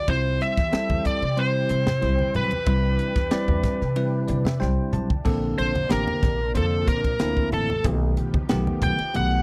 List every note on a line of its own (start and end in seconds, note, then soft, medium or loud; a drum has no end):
0.08 0.37 C2 loud
0.08 5.22 E3 medium
0.08 0.57 G3 medium
0.08 0.57 C4 medium
0.08 2.65 C4 medium
0.08 0.57 E4 medium
0.08 5.22 G4 medium
0.08 0.57 C5 medium
0.08 0.42 C5 medium
0.08 kick loud
0.08 ride medium
0.41 1.06 E5 medium
0.41 hi-hat pedal medium
0.41 ride medium
0.57 0.71 E2 medium
0.57 kick medium
0.57 snare soft
0.57 ride medium
0.72 1.22 G3 medium
0.72 1.22 C4 medium
0.72 1.22 E4 medium
0.72 1.22 A4 medium
0.72 muted upright bass stroke soft
0.72 snare loud
0.72 ride medium
0.90 1.04 E2 medium
0.90 kick medium
0.90 high conga medium
1.04 1.39 D5 medium
1.04 kick medium
1.04 hi-hat pedal medium
1.04 ride medium
1.04 low conga medium
1.22 1.65 C3 medium
1.22 ride medium
1.36 1.86 G3 medium
1.36 1.86 C4 medium
1.36 1.86 E4 medium
1.36 1.86 C5 medium
1.36 2.36 C5 medium
1.36 ride medium
1.69 2.04 C3 medium
1.69 hi-hat pedal medium
1.69 ride medium
1.87 snare loud
1.87 low conga medium
2.02 2.17 C2 medium
2.02 2.51 G3 medium
2.02 2.51 C4 medium
2.02 2.51 E4 medium
2.02 2.51 C5 medium
2.02 snare soft
2.02 ride medium
2.19 high conga medium
2.34 2.50 B1 medium
2.34 4.58 B4 medium
2.34 hi-hat pedal medium
2.34 ride medium
2.34 low conga medium
2.51 ride medium
2.51 high conga medium
2.66 2.96 C2 loud
2.66 3.16 G3 medium
2.66 3.16 C4 medium
2.66 5.24 D4 medium
2.66 3.16 E4 medium
2.66 3.16 B4 medium
2.66 kick loud
2.66 ride medium
2.99 hi-hat pedal medium
2.99 ride medium
3.15 3.30 E2 medium
3.15 kick medium
3.15 snare soft
3.15 ride medium
3.31 3.81 G3 medium
3.31 3.81 C4 medium
3.31 3.81 E4 medium
3.31 3.80 D5 loud
3.31 muted upright bass stroke soft
3.31 snare loud
3.31 ride medium
3.48 3.62 E2 medium
3.48 kick medium
3.48 high conga medium
3.63 kick medium
3.63 snare soft
3.63 hi-hat pedal medium
3.63 ride medium
3.63 low conga medium
3.81 4.24 C3 medium
3.81 snare soft
3.96 4.45 G3 medium
3.96 4.45 C4 medium
3.96 4.46 E4 medium
3.96 4.45 B4 medium
3.96 ride medium
4.28 4.63 C3 medium
4.28 4.44 D5 medium
4.28 hi-hat pedal medium
4.28 ride medium
4.28 high conga medium
4.45 4.60 E5 medium
4.45 snare medium
4.45 low conga medium
4.60 4.76 C2 medium
4.60 5.09 G3 medium
4.60 5.10 C4 medium
4.60 5.10 E4 medium
4.60 5.10 C5 medium
4.60 4.90 G5 medium
4.60 snare medium
4.93 5.09 B1 medium
4.93 5.23 A5 medium
4.93 hi-hat pedal medium
4.93 mid tom medium
4.93 low conga medium
5.10 kick medium
5.10 high conga medium
5.25 5.55 A#1 loud
5.25 7.82 C3 medium
5.25 5.74 D3 medium
5.25 9.42 F3 medium
5.25 5.74 A#3 medium
5.25 7.82 A#3 medium
5.25 5.75 C4 medium
5.25 7.82 D4 medium
5.25 5.74 A4 medium
5.25 kick medium
5.25 crash medium
5.58 5.87 A#1 medium
5.58 5.90 C5 medium
5.58 hi-hat pedal medium
5.58 ride medium
5.75 ride medium
5.75 high conga medium
5.89 6.06 A1 medium
5.89 6.39 D3 medium
5.89 6.39 A#3 medium
5.89 6.39 C4 medium
5.89 6.39 G4 medium
5.89 6.52 A#4 medium
5.89 snare medium
5.89 hi-hat pedal medium
5.89 ride medium
6.07 high conga medium
6.23 6.57 A#1 medium
6.23 kick medium
6.23 snare soft
6.23 hi-hat pedal medium
6.23 ride medium
6.23 high conga medium
6.23 low conga medium
6.54 6.84 F2 medium
6.54 7.04 D3 medium
6.54 7.04 A#3 medium
6.54 7.04 C4 medium
6.54 6.88 A4 medium
6.54 7.04 C5 medium
6.54 kick medium
6.54 hi-hat pedal medium
6.54 ride medium
6.88 7.17 A#2 medium
6.88 7.49 A#4 medium
6.88 kick medium
6.88 hi-hat pedal medium
6.88 ride medium
7.04 kick medium
7.04 ride medium
7.19 7.49 D2 medium
7.19 7.69 D3 medium
7.19 7.69 A#3 medium
7.19 7.69 C4 medium
7.19 7.69 E4 medium
7.19 snare loud
7.19 hi-hat pedal medium
7.19 ride medium
7.37 kick medium
7.52 7.82 A1 medium
7.52 7.84 A4 medium
7.52 hi-hat pedal medium
7.52 ride medium
7.52 low conga medium
7.70 high conga medium
7.84 8.14 B1 loud
7.84 8.34 D#3 medium
7.84 9.42 D#3 medium
7.84 8.34 A3 medium
7.84 8.34 B3 medium
7.84 9.42 B3 medium
7.84 8.34 G4 medium
7.84 9.42 G4 medium
7.84 kick loud
7.84 hi-hat pedal medium
7.84 ride medium
8.17 8.32 B2 medium
8.17 hi-hat pedal medium
8.17 ride medium
8.34 kick medium
8.34 high conga medium
8.49 8.65 B1 medium
8.49 8.99 D#3 medium
8.49 8.99 A3 medium
8.49 8.99 B3 medium
8.49 8.99 G4 loud
8.49 snare loud
8.49 hi-hat pedal medium
8.49 ride medium
8.67 high conga medium
8.82 8.97 B1 medium
8.82 9.14 G5 loud
8.82 kick medium
8.82 hi-hat pedal medium
8.82 ride medium
8.82 high conga medium
8.82 low conga medium
8.98 muted upright bass stroke soft
8.98 ride medium
9.14 9.42 B1 medium
9.14 9.42 D#3 medium
9.14 9.42 A3 medium
9.14 9.42 B3 medium
9.14 9.42 G4 medium
9.14 9.42 F#5 medium
9.14 hi-hat pedal medium
9.14 ride medium